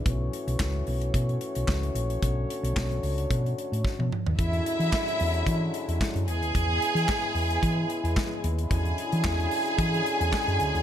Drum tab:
HH |x-xx--oxxxxx-xxx|x-xx-xoxxxxx----|xxxx-xoxx-xx-xxx|x-xx--oxx-xx--xx|
CP |----x-------x---|----x-----------|----x-------x---|----x-------x---|
SD |----o-------o---|----o-------o---|----o-------o---|----o-------o---|
T1 |----------------|-------------o--|----------------|----------------|
T2 |----------------|--------------o-|----------------|----------------|
FT |----------------|---------------o|----------------|----------------|
BD |o---o---o---o---|o---o---o---o---|o---o---o---o---|o---o---o---o---|

HH |xxxx-xoxxxxx-xxx|
CP |----x-------x---|
SD |----o-------o---|
T1 |----------------|
T2 |----------------|
FT |----------------|
BD |o---o---o---o---|